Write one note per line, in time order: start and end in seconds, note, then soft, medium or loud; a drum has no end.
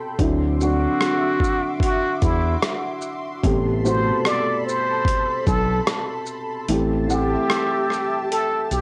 0.00 0.16 A4 medium
0.00 0.16 G5 medium
0.00 0.16 B5 medium
0.00 0.16 C6 medium
0.18 0.87 D2 medium
0.18 0.58 D3 medium
0.18 0.58 F#3 medium
0.18 0.59 C4 medium
0.18 0.59 E4 medium
0.18 3.40 F#4 medium
0.18 3.40 E5 medium
0.18 8.81 C6 medium
0.18 3.40 D6 medium
0.18 kick loud
0.18 closed hi-hat medium
0.61 2.14 D3 medium
0.61 2.15 F#3 medium
0.61 2.15 C4 medium
0.61 2.16 D4 medium
0.61 1.78 F#4 medium
0.61 shaker soft
1.01 cross-stick loud
1.01 closed hi-hat medium
1.40 kick medium
1.40 shaker soft
1.80 2.19 F#4 medium
1.80 kick loud
1.80 closed hi-hat medium
2.22 2.56 E2 loud
2.22 2.59 E4 medium
2.22 kick medium
2.22 closed hi-hat soft
2.22 shaker soft
2.62 cross-stick loud
2.62 closed hi-hat medium
3.01 shaker soft
3.43 4.11 A1 loud
3.43 3.82 C3 medium
3.43 3.82 A3 medium
3.43 3.83 B3 medium
3.43 3.83 G4 loud
3.43 6.64 A4 medium
3.43 6.64 A5 medium
3.43 6.64 B5 medium
3.43 kick loud
3.43 closed hi-hat medium
3.84 5.39 B2 medium
3.84 5.38 C3 medium
3.84 5.38 A3 medium
3.84 5.39 F#4 medium
3.84 4.28 C5 medium
3.84 shaker soft
4.25 4.62 D5 medium
4.25 cross-stick loud
4.25 closed hi-hat medium
4.66 5.43 C5 medium
4.66 shaker soft
5.05 kick medium
5.05 closed hi-hat medium
5.47 5.80 B1 loud
5.47 5.83 A4 medium
5.47 kick medium
5.47 closed hi-hat soft
5.47 shaker soft
5.87 cross-stick loud
5.87 closed hi-hat medium
6.26 shaker soft
6.68 7.36 A1 medium
6.68 7.06 E3 medium
6.68 7.07 A3 medium
6.68 7.07 C4 medium
6.68 8.81 G4 medium
6.68 7.08 G4 medium
6.68 8.81 E5 medium
6.68 8.81 A5 medium
6.68 closed hi-hat medium
7.08 8.62 E3 medium
7.08 8.62 A3 medium
7.08 8.63 C4 medium
7.08 8.27 G4 medium
7.08 8.63 F#5 medium
7.08 shaker soft
7.50 cross-stick loud
7.50 closed hi-hat medium
7.90 cross-stick soft
7.90 shaker soft
8.31 8.67 A4 medium
8.31 closed hi-hat medium
8.71 8.81 B1 medium
8.71 8.81 G4 medium
8.71 closed hi-hat soft
8.71 shaker soft